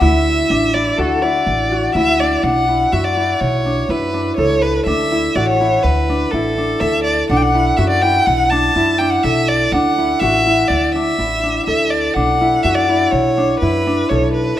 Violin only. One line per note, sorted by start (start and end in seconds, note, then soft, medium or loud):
0.01 0.75 E5 medium
0.74 0.99 D5 medium
0.97 1.23 A4 medium
1.21 1.94 D5 medium
1.95 2.21 E5 medium
2.20 2.45 D5 medium
2.43 2.94 F#5 medium
2.92 3.05 E5 medium
3.04 3.42 D5 medium
3.41 3.91 C#5 medium
3.90 4.36 B4 medium
4.37 4.64 C#5 medium
4.62 4.86 B4 medium
4.86 5.37 E5 medium
5.35 5.48 D5 medium
5.46 5.84 C#5 medium
5.82 6.33 B4 medium
6.31 6.82 A4 medium
6.80 7.03 E5 loud
7.04 7.27 D5 medium
7.29 7.38 F#5 medium
7.37 7.44 G5 medium
7.42 7.78 F#5 loud
7.77 7.89 E5 medium
7.90 8.03 D5 medium
8.02 8.27 G5 medium
8.26 8.52 F#5 medium
8.50 9.00 A5 medium
8.98 9.12 G5 medium
9.10 9.25 F#5 medium
9.23 9.50 E5 medium
9.48 9.73 D5 medium
9.72 10.21 F#5 medium
10.20 10.69 E5 medium
10.68 10.94 D5 medium
10.93 11.66 E5 medium
11.66 11.92 E5 medium
11.90 12.15 D5 medium
12.14 12.64 F#5 medium
12.63 12.76 E5 medium
12.75 13.13 D5 medium
13.11 13.59 C#5 medium
13.60 14.11 B4 medium
14.09 14.33 C#5 medium
14.34 14.59 B4 medium